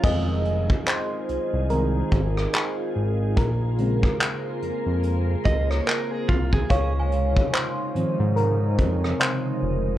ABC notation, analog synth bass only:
X:1
M:4/4
L:1/16
Q:"Swing 16ths" 1/4=72
K:Fphr
V:1 name="Analog synth bass" clef=bass
F,,,4 z2 C,, C,,3 A,,,2 z2 A,,,2 | B,,,4 z2 F,, F,,3 D,,2 z2 C,,2 | D,,4 z2 A,, A,,3 F,,2 z2 F,,,2 |]